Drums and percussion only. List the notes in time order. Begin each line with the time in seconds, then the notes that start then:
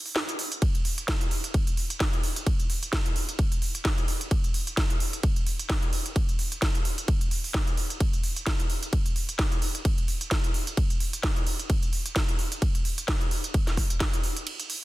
0.06 open hi-hat
0.16 snare
0.29 closed hi-hat
0.39 open hi-hat
0.52 closed hi-hat
0.62 kick, ride
0.75 closed hi-hat
0.85 open hi-hat
0.98 closed hi-hat
1.08 kick, snare, ride
1.21 closed hi-hat
1.31 open hi-hat
1.44 closed hi-hat
1.54 kick, ride
1.67 closed hi-hat
1.77 open hi-hat
1.90 closed hi-hat
2.00 kick, snare, ride
2.13 closed hi-hat
2.23 open hi-hat
2.36 closed hi-hat
2.47 kick, ride
2.60 closed hi-hat
2.70 open hi-hat
2.83 closed hi-hat
2.93 kick, snare, ride
3.06 closed hi-hat
3.16 open hi-hat
3.29 closed hi-hat
3.39 kick, ride
3.52 closed hi-hat
3.62 open hi-hat
3.75 closed hi-hat
3.85 kick, snare, ride
3.98 closed hi-hat
4.08 open hi-hat
4.21 closed hi-hat
4.31 kick, ride
4.44 closed hi-hat
4.54 open hi-hat
4.67 closed hi-hat
4.77 kick, snare, ride
4.90 closed hi-hat
5.00 open hi-hat
5.13 closed hi-hat
5.23 kick, ride
5.36 closed hi-hat
5.46 open hi-hat
5.59 closed hi-hat
5.70 kick, snare, ride
5.83 closed hi-hat
5.93 open hi-hat
6.06 closed hi-hat
6.16 kick, ride
6.29 closed hi-hat
6.39 open hi-hat
6.52 closed hi-hat
6.62 kick, snare, ride
6.75 closed hi-hat
6.85 open hi-hat
6.98 closed hi-hat
7.08 kick, ride
7.21 closed hi-hat
7.31 open hi-hat
7.44 open hi-hat
7.54 kick, snare, ride
7.67 closed hi-hat
7.77 open hi-hat
7.90 closed hi-hat
8.00 kick, ride
8.13 closed hi-hat
8.23 open hi-hat
8.36 closed hi-hat
8.47 kick, snare, ride
8.60 closed hi-hat
8.70 open hi-hat
8.83 closed hi-hat
8.93 kick, ride
9.06 closed hi-hat
9.16 open hi-hat
9.29 closed hi-hat
9.39 kick, snare, ride
9.52 closed hi-hat
9.62 open hi-hat
9.75 closed hi-hat
9.85 kick, ride
9.98 closed hi-hat
10.08 open hi-hat
10.21 closed hi-hat
10.31 kick, snare, ride
10.44 closed hi-hat
10.54 open hi-hat
10.67 closed hi-hat
10.77 kick, ride
10.90 closed hi-hat
11.00 open hi-hat
11.13 closed hi-hat
11.23 kick, snare, ride
11.36 closed hi-hat
11.47 open hi-hat
11.59 closed hi-hat
11.70 kick, ride
11.83 closed hi-hat
11.93 open hi-hat
12.06 closed hi-hat
12.16 kick, snare, ride
12.29 closed hi-hat
12.39 open hi-hat
12.52 closed hi-hat
12.62 kick, ride
12.75 closed hi-hat
12.85 open hi-hat
12.98 closed hi-hat
13.08 kick, snare, ride
13.21 closed hi-hat
13.31 open hi-hat
13.44 closed hi-hat
13.54 kick, ride
13.67 snare, closed hi-hat
13.77 kick, open hi-hat
13.90 closed hi-hat
14.00 kick, snare, ride
14.13 closed hi-hat
14.24 open hi-hat
14.37 closed hi-hat
14.47 ride
14.60 closed hi-hat
14.70 open hi-hat